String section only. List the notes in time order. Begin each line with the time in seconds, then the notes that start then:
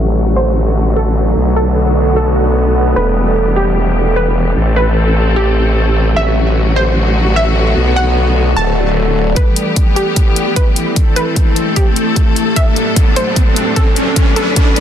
Already playing: D3 F#3 A3 F#4
1.37 B3 F#4
2.96 E3 G3 G4
4.56 A3 C4 A4
6.16 D3 F#3 F#4
7.77 B3
8.56 D3 F#3 A3
9.36 E3 G3 B3 G4
10.96 A3 C4 A4
12.56 A2 F#3 D4
14.16 B3 B4